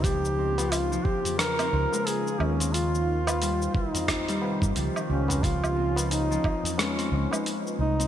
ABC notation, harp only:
X:1
M:4/4
L:1/16
Q:"Swing 16ths" 1/4=89
K:Dblyd
V:1 name="Harp"
F, z C F, z F, C z F C C A,4 C | F z2 F G,3 C2 G, C, z F, E, z C | F, z C F, z F, C z A, C C A,4 C |]